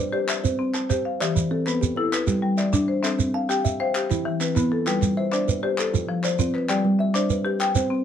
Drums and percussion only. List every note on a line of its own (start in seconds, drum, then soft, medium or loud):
0.29 clap medium
0.29 shekere medium
0.45 shekere medium
0.74 clap soft
0.74 shekere medium
0.90 clap soft
0.90 shekere medium
1.21 clap medium
1.21 shekere medium
1.36 shekere medium
1.67 clap soft
1.67 shekere medium
1.83 shekere medium
2.13 clap medium
2.13 shekere medium
2.27 clap soft
2.27 shekere medium
2.58 clap soft
2.58 shekere medium
2.73 clap soft
2.73 shekere medium
3.04 clap medium
3.04 shekere medium
3.19 shekere medium
3.50 clap soft
3.50 shekere medium
3.65 shekere medium
3.95 clap medium
3.95 shekere medium
4.10 clap soft
4.10 shekere medium
4.41 clap soft
4.41 shekere medium
4.56 clap soft
4.56 shekere medium
4.87 clap medium
4.87 shekere medium
5.02 clap soft
5.02 shekere medium
5.32 clap soft
5.32 shekere medium
5.49 shekere medium
5.78 clap medium
5.78 shekere medium
5.94 shekere medium
6.24 clap soft
6.24 shekere medium
6.39 shekere medium
6.55 clap soft
6.69 clap medium
6.69 shekere medium
7.15 clap soft
7.15 shekere medium
7.30 shekere medium
7.60 clap medium
7.60 shekere medium
7.75 clap soft
7.75 shekere medium